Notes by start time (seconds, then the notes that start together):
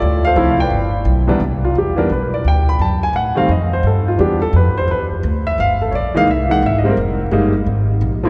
Already playing: F4 A4 D5
0.02 D2
0.25 A4 C5 F5
0.36 C2 F3 A3 C4 E4
0.50 F5
0.60 B4 D5 G5
0.70 G1
1.05 B1
1.27 C2 E3 G3 B3 D4
1.40 C2
1.65 F4
1.75 E2 G4
1.96 E3 G3 B3 D4 A#4
2.10 B1 B4
2.34 D5
2.44 D2 G5
2.69 B5
2.79 F#2 A5
3.03 G#5
3.13 A2 F#5
3.35 D#3 G3 A3 C4 F5
3.48 F2 D#5
3.73 C5
3.83 G2 A4
4.08 F4
4.18 E2 E3 G3 B3 D4 G4
4.42 A4
4.53 F2 B4
4.75 C5, muted upright bass stroke
4.88 E2 B4
5.11 muted upright bass stroke
5.23 D2
5.47 E5
5.58 G1 F5
5.82 A4
5.91 A#1 C#5
5.95 D5
6.14 E3 G#3 A#3 D#4 F5
6.27 C2 E5
6.49 E3 G#3 A#3 D#4 F#5
6.63 G#1 E5
6.78 D#5
6.83 G3 G#3 A#3 C4
6.90 A#4
6.97 F1
7.31 G1 G3 G#3 A#3 D#4
7.66 G#1
8.01 A#1
8.23 F3 A3 C4 E4